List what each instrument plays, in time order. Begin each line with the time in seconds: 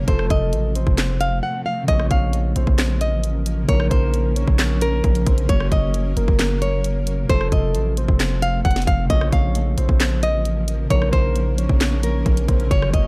0.03 tine electric piano C3 F3
0.08 808-style bass F1, ambient pad F3 A3 C4 A4, tine electric piano A3, soft synth lead A4, nylon-string guitar C5, kick, closed hi-hat
0.13 tine electric piano F4
0.19 cross-stick
0.30 808-style bass F1, nylon-string guitar D#5, kick, closed hi-hat
0.53 808-style bass A1, closed hi-hat
0.75 soft synth lead C5, closed hi-hat
0.87 808-style bass F1, kick
0.98 snare, clap, closed hi-hat
1.21 nylon-string guitar F5, closed hi-hat
1.43 nylon-string guitar F#5
1.66 nylon-string guitar F5
1.83 tine electric piano C#3 F3
1.88 808-style bass A#1, ambient pad F3 A#3 C#4 A#4, tine electric piano A#3, soft synth lead C#5, nylon-string guitar D#5, kick, closed hi-hat
1.93 tine electric piano F4
2.00 cross-stick
2.11 808-style bass A#1, nylon-string guitar F5, kick, closed hi-hat
2.33 closed hi-hat
2.56 808-style bass A#1, soft synth lead C5, closed hi-hat
2.67 808-style bass A#1, kick
2.78 snare, clap, closed hi-hat
3.01 nylon-string guitar D#5, closed hi-hat
3.12 808-style bass A1
3.24 closed hi-hat
3.46 closed hi-hat
3.64 tine electric piano C#3 F3
3.69 808-style bass A#1, tine electric piano A#3, soft synth lead A#4, nylon-string guitar C#5, kick, closed hi-hat
3.73 tine electric piano D#4
3.80 cross-stick
3.91 808-style bass A#1, nylon-string guitar C5, kick, closed hi-hat
4.14 closed hi-hat
4.36 soft synth lead C#5, closed hi-hat
4.48 808-style bass A#1, kick
4.59 snare, clap, closed hi-hat
4.81 nylon-string guitar A#4, closed hi-hat
5.04 808-style bass A#1, kick, closed hi-hat
5.15 closed hi-hat
5.26 808-style bass A#1, soft synth lead C5, kick, closed hi-hat
5.38 closed hi-hat
5.44 tine electric piano C#3 F#3
5.49 808-style bass F#1, ambient pad F#3, tine electric piano A#3, soft synth lead C#5, nylon-string guitar C#5, kick, closed hi-hat
5.54 tine electric piano F#4
5.60 cross-stick
5.72 808-style bass F#1, nylon-string guitar D#5, kick, closed hi-hat
5.94 closed hi-hat
6.17 808-style bass F#1, soft synth lead A#4, closed hi-hat
6.28 808-style bass F#1, kick
6.39 snare, clap, closed hi-hat
6.62 nylon-string guitar C#5, closed hi-hat
6.84 closed hi-hat
7.07 closed hi-hat
7.25 tine electric piano C3 F3
7.29 808-style bass F1, ambient pad F3 A3 C4 A4, tine electric piano A3, soft synth lead A4, nylon-string guitar C5, kick, closed hi-hat
7.34 tine electric piano F4
7.41 cross-stick
7.52 808-style bass F1, nylon-string guitar D#5, kick, closed hi-hat
7.75 808-style bass A1, closed hi-hat
7.97 soft synth lead C5, closed hi-hat
8.08 808-style bass F1, kick
8.20 snare, clap, closed hi-hat
8.42 nylon-string guitar F5, closed hi-hat
8.65 808-style bass F1, nylon-string guitar F#5, kick, closed hi-hat
8.71 closed hi-hat
8.76 snare, closed hi-hat
8.82 closed hi-hat
8.87 808-style bass F1, nylon-string guitar F5, kick, closed hi-hat
9.05 tine electric piano C#3 F3
9.10 808-style bass A#1, ambient pad A#3 C#4 A#4, tine electric piano A#3, soft synth lead C#5, nylon-string guitar D#5, kick, closed hi-hat
9.15 tine electric piano F4
9.21 cross-stick
9.33 808-style bass A#1, nylon-string guitar F5, kick, closed hi-hat
9.55 closed hi-hat
9.78 808-style bass A#1, soft synth lead C5, closed hi-hat
9.89 808-style bass A#1, kick
10.00 snare, clap, closed hi-hat
10.23 nylon-string guitar D#5, closed hi-hat
10.34 808-style bass A1
10.45 closed hi-hat
10.68 closed hi-hat
10.85 tine electric piano C#3 F3
10.90 808-style bass A#1, tine electric piano A#3, soft synth lead A#4, nylon-string guitar C#5, kick, closed hi-hat
10.95 tine electric piano D#4
11.02 cross-stick
11.13 808-style bass A#1, nylon-string guitar C5, kick, closed hi-hat
11.36 closed hi-hat
11.58 soft synth lead C#5, closed hi-hat
11.69 808-style bass A#1, kick
11.81 snare, clap, closed hi-hat
12.03 nylon-string guitar A#4, closed hi-hat
12.26 808-style bass A#1, kick, closed hi-hat
12.37 closed hi-hat
12.48 808-style bass A#1, soft synth lead C5, kick, closed hi-hat
12.60 closed hi-hat
12.66 tine electric piano C#3 F#3
12.71 808-style bass F#1, ambient pad F#3, tine electric piano A#3, nylon-string guitar C#5, soft synth lead C#5, kick, closed hi-hat
12.76 tine electric piano F#4
12.82 cross-stick
12.94 808-style bass F#1, nylon-string guitar D#5, kick, closed hi-hat